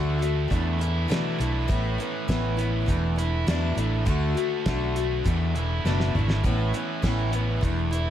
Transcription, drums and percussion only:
0.22 closed hi-hat
0.51 kick, closed hi-hat
0.81 closed hi-hat
1.11 snare, closed hi-hat
1.41 closed hi-hat
1.70 kick, closed hi-hat
2.00 closed hi-hat
2.29 kick, snare, closed hi-hat
2.59 closed hi-hat
2.88 kick, closed hi-hat
3.19 closed hi-hat
3.48 snare, closed hi-hat
3.78 closed hi-hat
4.06 kick, closed hi-hat
4.37 closed hi-hat
4.66 kick, snare, closed hi-hat
4.96 closed hi-hat
5.26 kick, closed hi-hat
5.56 closed hi-hat
5.86 snare
6.00 snare
6.15 mid tom
6.30 snare
6.44 kick, closed hi-hat
6.74 closed hi-hat
7.03 kick, snare, closed hi-hat
7.33 closed hi-hat
7.63 kick, closed hi-hat
7.93 closed hi-hat

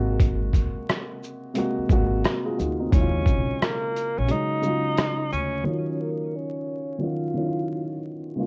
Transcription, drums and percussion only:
0.20 kick, closed hi-hat
0.53 kick, closed hi-hat, shaker
0.89 cross-stick, closed hi-hat
1.23 shaker
1.55 closed hi-hat
1.90 kick, shaker
2.24 cross-stick, closed hi-hat
2.60 shaker
2.92 kick, closed hi-hat
3.26 kick, shaker
3.62 cross-stick, closed hi-hat
3.96 closed hi-hat, shaker
4.28 closed hi-hat
4.63 shaker
4.98 cross-stick, closed hi-hat
5.33 shaker

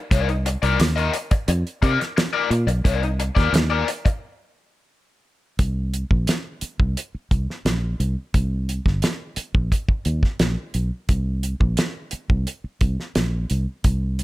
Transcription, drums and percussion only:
0.11 kick, closed hi-hat
0.29 closed hi-hat
0.46 closed hi-hat
0.63 closed hi-hat
0.80 snare, closed hi-hat
0.98 closed hi-hat
1.14 closed hi-hat
1.31 kick, closed hi-hat
1.48 closed hi-hat
1.67 closed hi-hat
1.83 kick, closed hi-hat
2.01 snare, closed hi-hat
2.18 snare, closed hi-hat
2.51 closed hi-hat
2.68 closed hi-hat
2.85 kick, closed hi-hat
3.03 closed hi-hat
3.20 closed hi-hat
3.37 kick, snare, closed hi-hat
3.54 snare, closed hi-hat
3.88 closed hi-hat
4.06 kick, closed hi-hat
5.59 kick, closed hi-hat
5.94 closed hi-hat
6.11 kick
6.27 snare, closed hi-hat
6.61 closed hi-hat
6.80 kick
6.97 closed hi-hat
7.31 kick, closed hi-hat
7.50 snare
7.66 snare, closed hi-hat
8.00 closed hi-hat
8.34 kick, closed hi-hat
8.69 closed hi-hat
8.86 kick, snare
9.02 snare, closed hi-hat
9.36 closed hi-hat
9.55 kick
9.72 kick, closed hi-hat
9.89 kick
10.05 closed hi-hat
10.23 kick, snare
10.39 snare, closed hi-hat
10.74 closed hi-hat
11.09 kick, closed hi-hat
11.43 closed hi-hat
11.61 kick
11.77 snare, closed hi-hat
12.11 closed hi-hat
12.30 kick
12.47 closed hi-hat
12.81 kick, closed hi-hat
13.00 snare
13.15 snare, closed hi-hat
13.50 closed hi-hat
13.84 kick, closed hi-hat
14.19 closed hi-hat

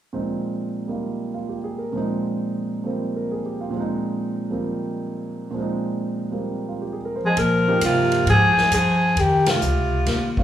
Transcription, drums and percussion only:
7.37 ride
7.81 hi-hat pedal, ride
8.12 ride
8.27 ride
8.57 snare
8.72 hi-hat pedal, ride
9.17 ride
9.46 snare, ride
9.61 hi-hat pedal
10.06 snare, ride
10.37 kick

